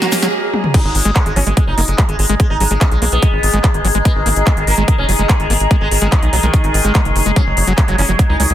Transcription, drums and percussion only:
0.02 snare, closed hi-hat, shaker
0.12 snare, open hi-hat, shaker
0.23 snare, closed hi-hat, shaker
0.54 high tom
0.64 mid tom
0.74 kick, closed hi-hat, crash
0.95 open hi-hat
1.05 closed hi-hat
1.16 kick, clap, closed hi-hat
1.26 closed hi-hat
1.36 open hi-hat
1.47 closed hi-hat
1.57 kick, closed hi-hat
1.78 open hi-hat
1.88 closed hi-hat
1.98 kick, clap, closed hi-hat
2.09 closed hi-hat
2.19 open hi-hat
2.29 closed hi-hat
2.40 kick, closed hi-hat
2.60 open hi-hat
2.71 closed hi-hat
2.81 kick, clap, closed hi-hat
2.92 closed hi-hat
3.02 open hi-hat
3.12 closed hi-hat
3.23 kick, closed hi-hat
3.43 open hi-hat
3.54 closed hi-hat
3.64 kick, clap, closed hi-hat
3.74 closed hi-hat
3.85 open hi-hat
3.95 closed hi-hat
4.05 kick, closed hi-hat
4.26 open hi-hat
4.36 closed hi-hat
4.47 kick, clap, closed hi-hat
4.57 closed hi-hat
4.67 open hi-hat
4.78 closed hi-hat
4.88 kick, closed hi-hat
5.09 open hi-hat
5.19 closed hi-hat
5.29 kick, clap, closed hi-hat
5.40 closed hi-hat
5.50 open hi-hat
5.60 closed hi-hat
5.71 kick, closed hi-hat
5.91 open hi-hat
6.02 closed hi-hat
6.12 kick, clap, closed hi-hat
6.23 closed hi-hat
6.33 open hi-hat
6.43 closed hi-hat
6.54 kick, closed hi-hat
6.64 closed hi-hat
6.74 open hi-hat
6.85 closed hi-hat
6.95 kick, clap, closed hi-hat
7.05 closed hi-hat
7.16 open hi-hat
7.26 closed hi-hat
7.36 kick, closed hi-hat
7.57 open hi-hat
7.67 closed hi-hat
7.78 kick, clap, closed hi-hat
7.88 closed hi-hat
7.98 open hi-hat
8.09 closed hi-hat
8.19 kick, closed hi-hat
8.40 open hi-hat
8.50 closed hi-hat

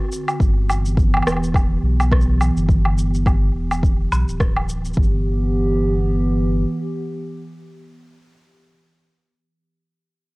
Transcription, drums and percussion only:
0.12 shaker
0.28 low woodblock, shaker
0.40 kick, shaker
0.70 low woodblock, shaker
0.86 shaker
0.97 kick, shaker
1.14 low woodblock
1.17 low woodblock
1.23 low woodblock
1.27 cross-stick, low woodblock, shaker
1.32 low woodblock
1.37 low woodblock
1.44 shaker
1.54 kick, low woodblock, shaker
2.00 low woodblock, shaker
2.12 kick, cross-stick
2.21 shaker
2.41 low woodblock, shaker
2.57 shaker
2.69 kick, shaker
2.85 low woodblock
2.98 shaker
3.14 shaker
3.26 kick, low woodblock, shaker
3.71 low woodblock, shaker
3.83 kick, shaker
4.12 low woodblock, shaker
4.29 shaker
4.40 kick, cross-stick, shaker
4.56 low woodblock
4.69 shaker
4.85 shaker
4.93 kick, shaker
5.03 shaker

